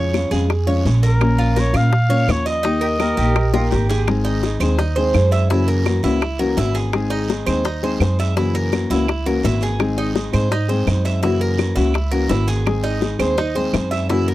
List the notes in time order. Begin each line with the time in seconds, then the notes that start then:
Already playing: F2 C#3 F3 G#3 C#4 F4 C#5
0.14 F3 G#3 C#4 F4, high bongo, short guiro, claves
0.31 F2 F3 G#3 C#4 F4 G#4, high bongo, short guiro
0.50 muted nylon-string guitar stroke, high bongo, long guiro, claves
0.67 F3 G#3 C#4 F4 C#5
0.85 A#1 F3 G#3 C#4 F4, high bongo, low bongo, short guiro
1.03 A#4, high bongo, short guiro
1.20 F3 A#3 C#4 F4, high bongo, long guiro, claves
1.39 F4, high bongo
1.56 F3 A#3 C#4 F4 A#4, high bongo, short guiro
1.60 C#5
1.73 A#2 A#3 C#4 F4 F5, high bongo, short guiro, claves
1.92 muted nylon-string guitar stroke, high bongo, long guiro
2.09 A#3 C#4 F4 C#5
2.27 D#2 F3 A#3 C#4 F4, high bongo, low bongo, short guiro, claves
2.31 C#5
2.46 D#5, high bongo, short guiro
2.63 D#3 A#3 D#4 G4, high bongo, long guiro
2.81 G4 A#4, high bongo
2.99 D#3 A#3 D#4 G4 A#4, high bongo, short guiro, claves
3.17 A#1 A#3 D#4 G4, high bongo, short guiro
3.36 muted nylon-string guitar stroke, high bongo, long guiro, claves
3.53 A#3 D#4 F4 G4 A#4, high bongo
3.71 G#1 D#3 A#3 D#4 G4, high bongo, short guiro
3.89 G#4, low bongo, short guiro
4.07 D#3 G#3 C4 D#4 G#4, high bongo, long guiro, claves
4.25 D#4, high bongo
4.43 G#3 C4 D#4 G#4, high bongo, short guiro
4.60 D#2 G#3 C4 D#4 G#4 C5, high bongo, short guiro, claves
4.78 D#4, muted nylon-string guitar stroke, high bongo, long guiro
4.96 G#3 C4 D#4 G#4 C5
5.14 F#2 G#3 C4 D#4 G#4, high bongo, low bongo, short guiro, claves
5.31 E5, high bongo, short guiro
5.50 C#3 E3 A#3 C#4 E4 F#4, high bongo, long guiro
5.68 A#4, high bongo
5.85 E3 A#3 C#4 F#4, high bongo, short guiro, claves
6.03 C#2 E3 A#3 C#4 E4 F#4, high bongo, short guiro
6.21 muted nylon-string guitar stroke, high bongo, long guiro, claves
6.39 E3 A#3 C#4 F#4 A#4
6.57 G#1 E3 A#3 C#4 E4 F#4, high bongo, low bongo, short guiro
6.75 G#4, high bongo, short guiro
6.93 D#3 G#3 C4 D#4 G#4, high bongo, long guiro, claves
7.10 D#4, high bongo
7.28 G#3 C4 D#4 G#4, high bongo, short guiro
7.46 D#2 G#3 C4 D#4 G#4 C5, high bongo, short guiro, claves
7.64 D#4, muted nylon-string guitar stroke, high bongo, long guiro
7.83 G#3 C4 D#4 G#4 C5
8.00 F#2 G#3 C4 D#4 G#4, high bongo, low bongo, short guiro, claves
8.19 E5, high bongo, short guiro
8.36 C#3 E3 A#3 C#4 E4 F#4, high bongo, long guiro
8.55 A#4, high bongo
8.72 E3 A#3 C#4 F#4, high bongo, short guiro, claves
8.90 C#2 E3 A#3 C#4 E4 F#4, high bongo, short guiro
9.08 muted nylon-string guitar stroke, high bongo, long guiro, claves
9.26 E3 A#3 C#4 F#4 A#4
9.43 G#1 E3 A#3 C#4 E4 F#4, high bongo, low bongo, short guiro
9.61 G#4, high bongo, short guiro
9.78 D#3 G#3 C4 D#4 G#4, high bongo, long guiro, claves
9.98 D#4, high bongo
10.15 G#3 C4 D#4 G#4, high bongo, short guiro
10.33 G#2 G#3 C4 D#4 G#4 C5, high bongo, short guiro, claves
10.50 D#4, muted nylon-string guitar stroke, high bongo, long guiro
10.68 G#3 C4 D#4 G#4 C5
10.87 F#2 G#3 C4 D#4 G#4, high bongo, low bongo, short guiro, claves
11.05 E5, high bongo, short guiro
11.22 C#3 E3 A#3 C#4 E4 F#4, high bongo, long guiro
11.41 A#4, high bongo
11.58 E3 A#3 C#4 F#4, high bongo, short guiro, claves
11.76 C#2 E3 A#3 C#4 E4 F#4, high bongo, short guiro
11.94 muted nylon-string guitar stroke, high bongo, long guiro, claves
12.11 E3 A#3 C#4 F#4 A#4
12.29 G#1 E3 A#3 C#4 E4 F#4, high bongo, low bongo, short guiro
12.48 G#4, high bongo, short guiro
12.66 D#3 G#3 C4 D#4 G#4, high bongo, long guiro, claves
12.84 D#4, high bongo
13.01 G#3 C4 D#4 G#4, high bongo, short guiro
13.19 D#2 G#3 C4 D#4 G#4 C5, high bongo, short guiro, claves
13.37 D#4, muted nylon-string guitar stroke, high bongo, long guiro
13.55 G#3 C4 D#4 G#4 C5
13.73 F#2 G#3 C4 D#4 G#4, high bongo, low bongo, short guiro, claves
13.91 E5, high bongo, short guiro
14.09 C#3 E3 A#3 C#4 E4 F#4, high bongo, long guiro
14.28 A#4, high bongo